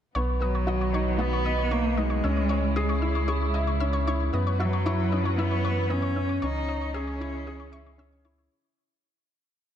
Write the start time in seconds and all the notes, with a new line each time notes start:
0.15 B1 D#3 F#3 B3 C#5
0.41 F#3 B4 D#5
0.55 C#5
0.67 F#4 D#5
0.81 C#5
0.93 D#4 C#5
1.18 B3 F#4 D#5
1.33 C#5
1.45 D#5
1.58 C#5
1.71 A#3 B3 C#5
1.97 G#3 D#4 D#5
2.10 C#5
2.24 C#2 C#3 G#3 C#4 E4 E5
2.37 C#5
2.49 C#5
2.76 G#4 D#5
2.89 C#5
3.02 E4 E5
3.15 C#5
3.28 G#4 C#5
3.54 D#5 E5
3.67 C#5
3.80 C#4 E5
3.93 C#5
4.07 E4 C#5
4.33 F#2 E3 F#3 B3 B4 D#5
4.47 C#5
4.59 F#3 F#4 E5
4.73 C#5
4.86 E4 C#5
5.12 C#4 D#5
5.25 C#5
5.37 B3 E4 E5
5.51 C#5
5.65 B4 C#5
5.89 B3 C#4 D#5
6.02 C#5
6.16 C#4 E5
6.29 C#5
6.42 C#2 C#3 G#3 C#4 D#4 C#5
6.68 C#5 D#5
6.82 C#5
6.94 C#4 G#4 E5
7.07 C#5
7.20 E4 C#5
7.47 G#4 D#5
7.60 C#5
7.72 E5 C#6
7.87 C#5
7.98 C#4 E5
8.25 E4 C#5
8.38 C#5